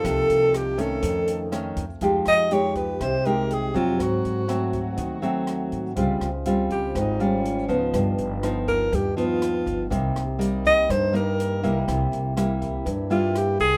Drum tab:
HH |xxxxxxxx|xxxxxxxx|xxxxxxxx|xxxxxxxx|
SD |r-r---r-|-r--r---|r-r---r-|-r--r---|
BD |o---o--o|o--oo---|o--oo---|o--oo---|

HH |xxxxxxxx|xxxxxxxx|xxxxxxxx|
SD |r-r---r-|-r--r---|r-r---r-|
BD |o--oo--o|o--oo---|o--oo---|